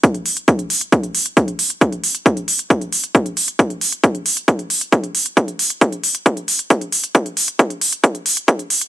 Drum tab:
HH |xxoxxxoxxxoxxxox|xxoxxxoxxxoxxxox|xxoxxxoxxxoxxxox|xxoxxxoxxxoxxxox|
BD |o---o---o---o---|o---o---o---o---|o---o---o---o---|o---o---o---o---|

HH |xxoxxxoxxxoxxxox|
BD |o---o---o---o---|